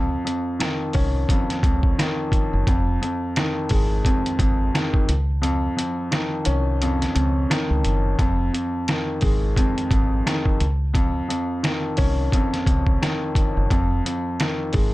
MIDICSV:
0, 0, Header, 1, 4, 480
1, 0, Start_track
1, 0, Key_signature, -4, "minor"
1, 0, Tempo, 689655
1, 1858, Time_signature, 4, 2, 24, 8
1, 10398, End_track
2, 0, Start_track
2, 0, Title_t, "Upright piano"
2, 0, Program_c, 0, 0
2, 0, Control_c, 0, 64, 127
2, 0, Note_on_c, 0, 41, 88
2, 160, Note_off_c, 0, 41, 0
2, 171, Note_on_c, 0, 41, 75
2, 414, Note_on_c, 0, 51, 83
2, 655, Note_on_c, 0, 61, 83
2, 897, Note_off_c, 0, 41, 0
2, 908, Note_on_c, 0, 41, 87
2, 1124, Note_off_c, 0, 41, 0
2, 1135, Note_on_c, 0, 41, 81
2, 1370, Note_off_c, 0, 51, 0
2, 1381, Note_on_c, 0, 51, 90
2, 1616, Note_off_c, 0, 61, 0
2, 1850, Note_off_c, 0, 41, 0
2, 1859, Note_off_c, 0, 51, 0
2, 1860, Note_on_c, 0, 41, 92
2, 1865, Control_c, 0, 64, 0
2, 1993, Control_c, 0, 64, 127
2, 2088, Note_off_c, 0, 41, 0
2, 2098, Note_on_c, 0, 41, 74
2, 2346, Note_on_c, 0, 51, 85
2, 2575, Note_on_c, 0, 56, 85
2, 2813, Note_off_c, 0, 41, 0
2, 2824, Note_on_c, 0, 41, 90
2, 3046, Note_off_c, 0, 41, 0
2, 3057, Note_on_c, 0, 41, 80
2, 3291, Note_off_c, 0, 51, 0
2, 3301, Note_on_c, 0, 51, 88
2, 3536, Note_off_c, 0, 56, 0
2, 3537, Note_off_c, 0, 41, 0
2, 3540, Note_off_c, 0, 51, 0
2, 3546, Control_c, 0, 64, 0
2, 3660, Control_c, 0, 64, 127
2, 3770, Note_on_c, 0, 41, 91
2, 4001, Note_off_c, 0, 41, 0
2, 4012, Note_on_c, 0, 41, 74
2, 4255, Note_on_c, 0, 51, 84
2, 4495, Note_on_c, 0, 61, 85
2, 4737, Note_off_c, 0, 41, 0
2, 4747, Note_on_c, 0, 41, 92
2, 4965, Note_off_c, 0, 41, 0
2, 4975, Note_on_c, 0, 41, 83
2, 5210, Note_off_c, 0, 51, 0
2, 5221, Note_on_c, 0, 51, 88
2, 5456, Note_off_c, 0, 61, 0
2, 5688, Note_off_c, 0, 41, 0
2, 5699, Note_off_c, 0, 51, 0
2, 5699, Note_on_c, 0, 41, 96
2, 5705, Control_c, 0, 64, 0
2, 5809, Control_c, 0, 64, 127
2, 5928, Note_off_c, 0, 41, 0
2, 5938, Note_on_c, 0, 41, 74
2, 6184, Note_on_c, 0, 51, 86
2, 6415, Note_on_c, 0, 56, 86
2, 6654, Note_off_c, 0, 41, 0
2, 6664, Note_on_c, 0, 41, 87
2, 6888, Note_off_c, 0, 41, 0
2, 6898, Note_on_c, 0, 41, 80
2, 7132, Note_off_c, 0, 51, 0
2, 7143, Note_on_c, 0, 51, 85
2, 7376, Note_off_c, 0, 56, 0
2, 7378, Note_off_c, 0, 41, 0
2, 7380, Note_off_c, 0, 51, 0
2, 7386, Control_c, 0, 64, 0
2, 7526, Control_c, 0, 64, 127
2, 7611, Note_on_c, 0, 41, 91
2, 7841, Note_off_c, 0, 41, 0
2, 7852, Note_on_c, 0, 41, 76
2, 8095, Note_on_c, 0, 51, 81
2, 8335, Note_on_c, 0, 61, 88
2, 8577, Note_off_c, 0, 41, 0
2, 8588, Note_on_c, 0, 41, 89
2, 8804, Note_off_c, 0, 41, 0
2, 8814, Note_on_c, 0, 41, 81
2, 9051, Note_off_c, 0, 51, 0
2, 9061, Note_on_c, 0, 51, 88
2, 9296, Note_off_c, 0, 61, 0
2, 9530, Note_off_c, 0, 41, 0
2, 9539, Note_off_c, 0, 51, 0
2, 9540, Note_on_c, 0, 41, 92
2, 9545, Control_c, 0, 64, 0
2, 9652, Control_c, 0, 64, 127
2, 9768, Note_off_c, 0, 41, 0
2, 9779, Note_on_c, 0, 41, 74
2, 10025, Note_on_c, 0, 51, 82
2, 10254, Note_on_c, 0, 56, 86
2, 10398, Note_off_c, 0, 41, 0
2, 10398, Note_off_c, 0, 51, 0
2, 10398, Note_off_c, 0, 56, 0
2, 10398, End_track
3, 0, Start_track
3, 0, Title_t, "Fingered electric bass"
3, 0, Program_c, 1, 33
3, 0, Note_on_c, 1, 37, 95
3, 114, Note_off_c, 1, 37, 0
3, 663, Note_on_c, 1, 36, 95
3, 867, Note_off_c, 1, 36, 0
3, 1137, Note_on_c, 1, 37, 94
3, 1344, Note_off_c, 1, 37, 0
3, 1762, Note_on_c, 1, 30, 94
3, 1847, Note_off_c, 1, 30, 0
3, 1861, Note_on_c, 1, 29, 110
3, 2066, Note_off_c, 1, 29, 0
3, 2583, Note_on_c, 1, 32, 86
3, 2787, Note_off_c, 1, 32, 0
3, 3057, Note_on_c, 1, 32, 90
3, 3264, Note_off_c, 1, 32, 0
3, 3543, Note_on_c, 1, 37, 96
3, 3954, Note_off_c, 1, 37, 0
3, 4502, Note_on_c, 1, 36, 92
3, 4914, Note_off_c, 1, 36, 0
3, 4982, Note_on_c, 1, 37, 95
3, 5187, Note_off_c, 1, 37, 0
3, 5362, Note_on_c, 1, 37, 84
3, 5447, Note_off_c, 1, 37, 0
3, 5464, Note_on_c, 1, 30, 84
3, 5668, Note_off_c, 1, 30, 0
3, 5701, Note_on_c, 1, 29, 104
3, 5906, Note_off_c, 1, 29, 0
3, 6423, Note_on_c, 1, 32, 89
3, 6627, Note_off_c, 1, 32, 0
3, 6898, Note_on_c, 1, 32, 91
3, 7104, Note_off_c, 1, 32, 0
3, 7383, Note_on_c, 1, 37, 92
3, 7794, Note_off_c, 1, 37, 0
3, 8343, Note_on_c, 1, 36, 99
3, 8547, Note_off_c, 1, 36, 0
3, 8817, Note_on_c, 1, 37, 93
3, 9024, Note_off_c, 1, 37, 0
3, 9443, Note_on_c, 1, 30, 96
3, 9527, Note_off_c, 1, 30, 0
3, 9541, Note_on_c, 1, 29, 109
3, 9746, Note_off_c, 1, 29, 0
3, 10263, Note_on_c, 1, 32, 87
3, 10398, Note_off_c, 1, 32, 0
3, 10398, End_track
4, 0, Start_track
4, 0, Title_t, "Drums"
4, 188, Note_on_c, 9, 42, 70
4, 257, Note_off_c, 9, 42, 0
4, 420, Note_on_c, 9, 42, 88
4, 426, Note_on_c, 9, 38, 112
4, 427, Note_on_c, 9, 37, 89
4, 490, Note_off_c, 9, 42, 0
4, 495, Note_off_c, 9, 38, 0
4, 497, Note_off_c, 9, 37, 0
4, 650, Note_on_c, 9, 46, 59
4, 660, Note_on_c, 9, 36, 93
4, 720, Note_off_c, 9, 46, 0
4, 730, Note_off_c, 9, 36, 0
4, 897, Note_on_c, 9, 36, 96
4, 903, Note_on_c, 9, 42, 89
4, 967, Note_off_c, 9, 36, 0
4, 973, Note_off_c, 9, 42, 0
4, 1044, Note_on_c, 9, 38, 35
4, 1045, Note_on_c, 9, 42, 51
4, 1114, Note_off_c, 9, 38, 0
4, 1115, Note_off_c, 9, 42, 0
4, 1135, Note_on_c, 9, 36, 101
4, 1140, Note_on_c, 9, 42, 88
4, 1204, Note_off_c, 9, 36, 0
4, 1210, Note_off_c, 9, 42, 0
4, 1275, Note_on_c, 9, 36, 82
4, 1344, Note_off_c, 9, 36, 0
4, 1386, Note_on_c, 9, 38, 108
4, 1388, Note_on_c, 9, 37, 83
4, 1389, Note_on_c, 9, 42, 112
4, 1456, Note_off_c, 9, 38, 0
4, 1458, Note_off_c, 9, 37, 0
4, 1458, Note_off_c, 9, 42, 0
4, 1614, Note_on_c, 9, 36, 100
4, 1620, Note_on_c, 9, 42, 72
4, 1683, Note_off_c, 9, 36, 0
4, 1690, Note_off_c, 9, 42, 0
4, 1858, Note_on_c, 9, 36, 114
4, 1862, Note_on_c, 9, 42, 97
4, 1928, Note_off_c, 9, 36, 0
4, 1931, Note_off_c, 9, 42, 0
4, 2107, Note_on_c, 9, 42, 71
4, 2177, Note_off_c, 9, 42, 0
4, 2341, Note_on_c, 9, 42, 91
4, 2346, Note_on_c, 9, 38, 113
4, 2347, Note_on_c, 9, 37, 93
4, 2410, Note_off_c, 9, 42, 0
4, 2415, Note_off_c, 9, 38, 0
4, 2417, Note_off_c, 9, 37, 0
4, 2571, Note_on_c, 9, 46, 57
4, 2580, Note_on_c, 9, 36, 93
4, 2640, Note_off_c, 9, 46, 0
4, 2650, Note_off_c, 9, 36, 0
4, 2817, Note_on_c, 9, 36, 94
4, 2825, Note_on_c, 9, 42, 90
4, 2887, Note_off_c, 9, 36, 0
4, 2894, Note_off_c, 9, 42, 0
4, 2966, Note_on_c, 9, 42, 51
4, 3035, Note_off_c, 9, 42, 0
4, 3055, Note_on_c, 9, 36, 96
4, 3060, Note_on_c, 9, 42, 86
4, 3124, Note_off_c, 9, 36, 0
4, 3129, Note_off_c, 9, 42, 0
4, 3306, Note_on_c, 9, 38, 108
4, 3308, Note_on_c, 9, 37, 85
4, 3309, Note_on_c, 9, 42, 106
4, 3376, Note_off_c, 9, 38, 0
4, 3378, Note_off_c, 9, 37, 0
4, 3378, Note_off_c, 9, 42, 0
4, 3437, Note_on_c, 9, 36, 95
4, 3506, Note_off_c, 9, 36, 0
4, 3541, Note_on_c, 9, 42, 73
4, 3611, Note_off_c, 9, 42, 0
4, 3782, Note_on_c, 9, 42, 96
4, 3851, Note_off_c, 9, 42, 0
4, 4027, Note_on_c, 9, 42, 74
4, 4097, Note_off_c, 9, 42, 0
4, 4260, Note_on_c, 9, 42, 91
4, 4265, Note_on_c, 9, 38, 114
4, 4267, Note_on_c, 9, 37, 90
4, 4330, Note_off_c, 9, 42, 0
4, 4335, Note_off_c, 9, 38, 0
4, 4336, Note_off_c, 9, 37, 0
4, 4490, Note_on_c, 9, 42, 78
4, 4560, Note_off_c, 9, 42, 0
4, 4744, Note_on_c, 9, 42, 93
4, 4814, Note_off_c, 9, 42, 0
4, 4886, Note_on_c, 9, 38, 35
4, 4887, Note_on_c, 9, 42, 50
4, 4955, Note_off_c, 9, 38, 0
4, 4956, Note_off_c, 9, 42, 0
4, 4981, Note_on_c, 9, 42, 85
4, 5050, Note_off_c, 9, 42, 0
4, 5227, Note_on_c, 9, 38, 109
4, 5228, Note_on_c, 9, 37, 89
4, 5229, Note_on_c, 9, 42, 107
4, 5296, Note_off_c, 9, 38, 0
4, 5298, Note_off_c, 9, 37, 0
4, 5299, Note_off_c, 9, 42, 0
4, 5461, Note_on_c, 9, 42, 73
4, 5530, Note_off_c, 9, 42, 0
4, 5699, Note_on_c, 9, 36, 114
4, 5701, Note_on_c, 9, 42, 94
4, 5768, Note_off_c, 9, 36, 0
4, 5771, Note_off_c, 9, 42, 0
4, 5947, Note_on_c, 9, 42, 72
4, 6017, Note_off_c, 9, 42, 0
4, 6181, Note_on_c, 9, 42, 89
4, 6186, Note_on_c, 9, 38, 113
4, 6188, Note_on_c, 9, 37, 88
4, 6250, Note_off_c, 9, 42, 0
4, 6256, Note_off_c, 9, 38, 0
4, 6257, Note_off_c, 9, 37, 0
4, 6410, Note_on_c, 9, 46, 57
4, 6420, Note_on_c, 9, 36, 91
4, 6480, Note_off_c, 9, 46, 0
4, 6490, Note_off_c, 9, 36, 0
4, 6657, Note_on_c, 9, 36, 96
4, 6664, Note_on_c, 9, 42, 93
4, 6727, Note_off_c, 9, 36, 0
4, 6733, Note_off_c, 9, 42, 0
4, 6805, Note_on_c, 9, 42, 49
4, 6875, Note_off_c, 9, 42, 0
4, 6895, Note_on_c, 9, 36, 98
4, 6901, Note_on_c, 9, 42, 85
4, 6965, Note_off_c, 9, 36, 0
4, 6970, Note_off_c, 9, 42, 0
4, 7147, Note_on_c, 9, 38, 110
4, 7149, Note_on_c, 9, 37, 90
4, 7150, Note_on_c, 9, 42, 106
4, 7217, Note_off_c, 9, 38, 0
4, 7218, Note_off_c, 9, 37, 0
4, 7219, Note_off_c, 9, 42, 0
4, 7277, Note_on_c, 9, 36, 95
4, 7347, Note_off_c, 9, 36, 0
4, 7381, Note_on_c, 9, 42, 71
4, 7451, Note_off_c, 9, 42, 0
4, 7619, Note_on_c, 9, 36, 116
4, 7622, Note_on_c, 9, 42, 95
4, 7688, Note_off_c, 9, 36, 0
4, 7692, Note_off_c, 9, 42, 0
4, 7868, Note_on_c, 9, 42, 70
4, 7937, Note_off_c, 9, 42, 0
4, 8101, Note_on_c, 9, 42, 90
4, 8106, Note_on_c, 9, 38, 110
4, 8108, Note_on_c, 9, 37, 89
4, 8170, Note_off_c, 9, 42, 0
4, 8176, Note_off_c, 9, 38, 0
4, 8177, Note_off_c, 9, 37, 0
4, 8331, Note_on_c, 9, 46, 57
4, 8340, Note_on_c, 9, 36, 95
4, 8400, Note_off_c, 9, 46, 0
4, 8410, Note_off_c, 9, 36, 0
4, 8577, Note_on_c, 9, 36, 91
4, 8584, Note_on_c, 9, 42, 95
4, 8647, Note_off_c, 9, 36, 0
4, 8654, Note_off_c, 9, 42, 0
4, 8725, Note_on_c, 9, 38, 35
4, 8726, Note_on_c, 9, 42, 51
4, 8794, Note_off_c, 9, 38, 0
4, 8795, Note_off_c, 9, 42, 0
4, 8815, Note_on_c, 9, 36, 99
4, 8820, Note_on_c, 9, 42, 86
4, 8884, Note_off_c, 9, 36, 0
4, 8889, Note_off_c, 9, 42, 0
4, 8954, Note_on_c, 9, 36, 84
4, 9024, Note_off_c, 9, 36, 0
4, 9066, Note_on_c, 9, 38, 105
4, 9068, Note_on_c, 9, 37, 87
4, 9069, Note_on_c, 9, 42, 114
4, 9136, Note_off_c, 9, 38, 0
4, 9138, Note_off_c, 9, 37, 0
4, 9138, Note_off_c, 9, 42, 0
4, 9294, Note_on_c, 9, 36, 103
4, 9300, Note_on_c, 9, 42, 69
4, 9363, Note_off_c, 9, 36, 0
4, 9370, Note_off_c, 9, 42, 0
4, 9538, Note_on_c, 9, 36, 113
4, 9542, Note_on_c, 9, 42, 96
4, 9608, Note_off_c, 9, 36, 0
4, 9611, Note_off_c, 9, 42, 0
4, 9787, Note_on_c, 9, 42, 72
4, 9857, Note_off_c, 9, 42, 0
4, 10021, Note_on_c, 9, 42, 93
4, 10026, Note_on_c, 9, 38, 112
4, 10028, Note_on_c, 9, 37, 89
4, 10090, Note_off_c, 9, 42, 0
4, 10096, Note_off_c, 9, 38, 0
4, 10097, Note_off_c, 9, 37, 0
4, 10250, Note_on_c, 9, 46, 59
4, 10260, Note_on_c, 9, 36, 94
4, 10320, Note_off_c, 9, 46, 0
4, 10330, Note_off_c, 9, 36, 0
4, 10398, End_track
0, 0, End_of_file